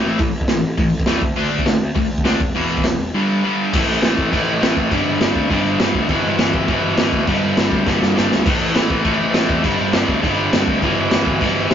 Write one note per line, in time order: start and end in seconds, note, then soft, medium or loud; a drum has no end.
0.00 0.18 A2 medium
0.00 0.19 E3 medium
0.00 0.19 A3 loud
0.06 0.15 A1 medium
0.19 0.29 A1 medium
0.19 0.33 A2 medium
0.19 0.33 E3 medium
0.19 kick loud
0.19 open hi-hat medium
0.35 0.44 A1 medium
0.41 kick medium
0.48 0.59 A1 medium
0.48 0.62 A2 medium
0.48 0.63 E3 medium
0.48 snare loud
0.48 open hi-hat medium
0.64 0.73 A1 medium
0.77 0.88 A1 loud
0.77 0.91 A2 medium
0.77 0.92 E3 medium
0.77 kick loud
0.77 open hi-hat medium
0.93 1.03 A1 medium
1.00 kick medium
1.06 1.22 E2 medium
1.06 1.21 A2 medium
1.06 1.21 E3 medium
1.06 1.22 A3 loud
1.06 snare loud
1.06 open hi-hat medium
1.22 1.32 D2 medium
1.22 kick loud
1.36 1.47 D2 medium
1.36 1.65 D3 medium
1.36 1.66 A3 medium
1.36 1.66 D4 loud
1.36 open hi-hat medium
1.51 1.61 D2 medium
1.59 kick medium
1.66 1.76 D2 medium
1.66 1.80 D3 medium
1.66 1.80 A3 medium
1.66 snare loud
1.66 open hi-hat medium
1.81 1.91 D2 loud
1.95 2.06 D2 medium
1.95 2.09 D3 medium
1.95 2.09 A3 medium
1.95 kick loud
1.95 open hi-hat medium
2.10 2.20 D2 medium
2.18 kick medium
2.24 2.35 D2 medium
2.24 2.39 D3 medium
2.24 2.39 A3 medium
2.24 2.39 D4 loud
2.24 snare loud
2.24 open hi-hat medium
2.40 2.50 E1 medium
2.40 kick loud
2.55 2.65 E1 medium
2.55 2.83 E2 medium
2.55 2.84 B2 loud
2.55 2.84 E3 loud
2.55 open hi-hat medium
2.69 2.79 E1 medium
2.77 kick medium
2.84 2.94 E1 medium
2.84 2.98 E2 medium
2.84 2.98 B2 medium
2.84 snare loud
2.84 open hi-hat medium
3.00 3.09 E1 medium
3.14 3.43 G2 medium
3.14 3.43 D3 loud
3.14 3.43 G3 loud
3.44 3.72 G2 medium
3.44 3.72 D3 medium
3.44 3.73 G3 loud
3.73 3.83 A1 loud
3.73 4.02 A2 loud
3.73 4.02 E3 medium
3.73 4.01 A3 loud
3.73 kick loud
3.73 crash loud
3.73 crash medium
3.88 3.98 A1 medium
4.02 4.13 A1 loud
4.02 4.30 A2 medium
4.02 4.31 E3 medium
4.02 4.31 A3 medium
4.02 snare loud
4.02 crash medium
4.18 4.28 A1 loud
4.18 kick medium
4.32 4.42 A1 loud
4.32 4.61 A2 loud
4.32 4.61 E3 loud
4.32 4.60 A3 loud
4.32 kick loud
4.32 crash medium
4.48 4.57 A1 loud
4.62 4.72 A1 medium
4.62 4.91 A2 medium
4.62 4.91 E3 medium
4.62 4.90 A3 loud
4.62 snare loud
4.62 crash medium
4.77 4.87 A1 medium
4.77 kick medium
4.91 5.01 G1 loud
4.91 5.21 G2 loud
4.91 5.20 D3 loud
4.91 5.20 G3 loud
4.91 kick loud
4.91 crash medium
5.06 5.16 G1 medium
5.21 5.30 G1 loud
5.21 5.50 G2 medium
5.21 5.49 D3 medium
5.21 5.51 G3 medium
5.21 snare loud
5.21 crash medium
5.36 5.45 D2 medium
5.36 kick medium
5.50 5.60 G1 loud
5.50 5.80 G2 loud
5.50 5.78 D3 loud
5.50 5.79 G3 loud
5.50 kick loud
5.50 crash medium
5.65 5.75 G1 medium
5.79 5.90 G1 loud
5.79 6.08 G2 medium
5.79 6.09 D3 medium
5.79 6.09 G3 medium
5.79 snare loud
5.79 crash medium
5.94 6.04 D2 loud
5.94 kick medium
6.09 6.19 G1 loud
6.09 6.38 E2 loud
6.09 6.38 B2 loud
6.09 6.37 E3 loud
6.09 kick loud
6.09 crash medium
6.25 6.35 G1 medium
6.38 6.49 G1 loud
6.38 6.66 E2 medium
6.38 6.67 B2 medium
6.38 6.67 E3 loud
6.38 snare loud
6.38 crash medium
6.54 6.64 G1 loud
6.54 kick loud
6.68 6.78 G1 loud
6.68 6.97 E2 medium
6.68 6.97 B2 loud
6.68 6.97 E3 loud
6.68 kick loud
6.68 crash medium
6.84 6.93 G1 medium
6.98 7.08 G1 loud
6.98 7.27 E2 medium
6.98 7.27 B2 medium
6.98 7.27 E3 loud
6.98 snare loud
6.98 crash medium
7.13 7.23 D2 loud
7.13 kick medium
7.27 7.37 G1 loud
7.27 7.57 G2 loud
7.27 7.56 D3 loud
7.27 7.56 G3 loud
7.27 kick loud
7.27 crash medium
7.43 7.52 G1 loud
7.57 7.67 G1 medium
7.57 7.85 G2 medium
7.57 7.86 D3 medium
7.57 7.86 G3 loud
7.57 snare loud
7.57 crash medium
7.72 7.82 D2 loud
7.72 kick medium
7.86 7.96 G1 medium
7.86 8.16 G2 loud
7.86 8.15 D3 loud
7.86 8.15 G3 loud
7.86 kick loud
7.86 snare medium
8.02 8.12 G1 medium
8.02 snare medium
8.16 8.27 G1 medium
8.16 8.45 G2 medium
8.16 8.45 D3 medium
8.16 8.45 G3 loud
8.16 snare loud
8.32 8.41 D2 medium
8.32 snare medium
8.45 8.56 A1 medium
8.45 8.74 A2 loud
8.45 8.74 E3 loud
8.45 8.74 A3 loud
8.45 kick loud
8.45 crash loud
8.45 crash medium
8.61 8.71 A1 loud
8.75 8.85 A1 loud
8.75 9.03 A2 medium
8.75 9.04 E3 medium
8.75 9.04 A3 medium
8.75 snare loud
8.75 crash medium
8.90 9.00 A1 medium
8.90 kick medium
9.04 9.15 A1 loud
9.04 9.34 A2 loud
9.04 9.33 E3 loud
9.04 9.33 A3 loud
9.04 kick loud
9.04 crash medium
9.21 9.30 A1 loud
9.34 9.45 A1 medium
9.34 9.63 A2 medium
9.34 9.63 E3 medium
9.34 9.63 A3 medium
9.34 snare loud
9.34 crash medium
9.49 9.59 E2 loud
9.49 kick medium
9.63 9.74 G1 medium
9.63 9.94 G2 loud
9.63 9.93 D3 loud
9.63 9.93 G3 loud
9.63 kick loud
9.63 crash medium
9.79 9.89 G1 medium
9.93 10.03 G1 loud
9.93 10.22 G2 medium
9.93 10.22 D3 medium
9.93 10.23 G3 loud
9.93 snare loud
9.93 crash medium
10.08 10.18 D2 medium
10.08 kick medium
10.23 10.33 G1 loud
10.23 10.52 G2 loud
10.23 10.52 D3 loud
10.23 10.51 G3 loud
10.23 kick loud
10.23 crash medium
10.38 10.47 G1 medium
10.53 10.62 G1 medium
10.53 10.81 G2 medium
10.53 10.81 D3 medium
10.53 10.81 G3 loud
10.53 snare loud
10.53 crash medium
10.68 10.77 D2 medium
10.68 kick loud
10.82 10.92 G1 loud
10.82 11.11 E2 loud
10.82 11.11 B2 loud
10.82 11.11 E3 loud
10.82 kick loud
10.82 crash medium
10.98 11.07 G1 medium
11.11 11.22 G1 medium
11.11 11.40 E2 medium
11.11 11.41 B2 medium
11.11 11.41 E3 loud
11.11 snare loud
11.11 crash medium
11.26 11.36 G1 medium
11.26 kick medium
11.41 11.51 G1 loud
11.41 11.70 E2 loud
11.41 11.70 B2 loud
11.41 11.69 E3 loud
11.41 kick loud
11.41 crash medium
11.56 11.65 G1 medium
11.70 11.74 G1 medium
11.70 11.74 E2 medium
11.70 11.74 B2 medium
11.70 11.74 E3 medium
11.70 snare loud
11.70 crash medium